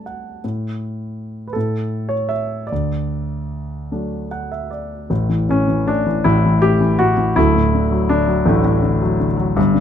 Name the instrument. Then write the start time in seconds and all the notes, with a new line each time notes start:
grand piano
Already playing: G2 G3 A3 D4 A4 A5
0.06 F#5
0.44 A2
1.48 B4
1.53 A2 A4
2.09 C#5
2.29 E5
2.67 D5
2.72 D2
3.91 F#3 A3 D4
4.31 F#5
4.52 E5
4.71 D5
5.10 A1 A2
5.29 E3
5.49 A2 C#4
5.68 E3
5.87 A2 D4
6.07 E3
6.24 A1 A2 E4
6.45 E3
6.62 A2 G4
6.81 E3
6.99 A2 F#4
7.17 E3
7.36 D1 D2 A3 E4
7.56 A2
7.74 D3
7.92 F#3
8.09 D3 D4
8.27 F#3
8.45 A1 A2 D3 A3
8.50 F#3
8.64 A2
8.82 D3
9.02 F#3
9.20 D3
9.37 F#3
9.57 G1 G2
9.74 D3